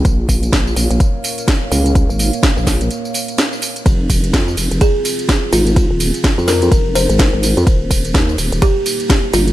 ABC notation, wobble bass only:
X:1
M:4/4
L:1/16
Q:"Swing 16ths" 1/4=126
K:Fm
V:1 name="Wobble bass" clef=bass
B,,,2 B,,,2 B,,,2 B,,, B,,, z6 D,,2- | D,, A,,,2 z2 B,,,3 z8 | F,,,2 F,,,2 F,,2 F,,, F,,, z6 A,,,2- | A,,, E,,,2 z2 F,,3 F,,,3 A,,,2 A,,,2 F,, |
E,,,2 E,,,2 E,,2 E,,, E,,, z6 G,,,2 |]